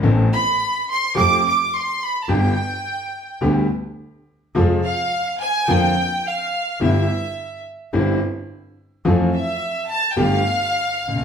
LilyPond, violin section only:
\new Staff \with { instrumentName = "Violin section" } { \time 4/4 \key g \mixolydian \tempo 4 = 107 r8 b''4 c'''8 d'''8 d'''8 c'''8 b''16. a''32 | g''2 r2 | r8 f''4 aes''8 g''4 f''4 | e''4. r2 r8 |
r8 e''4 a''16. g''32 f''2 | }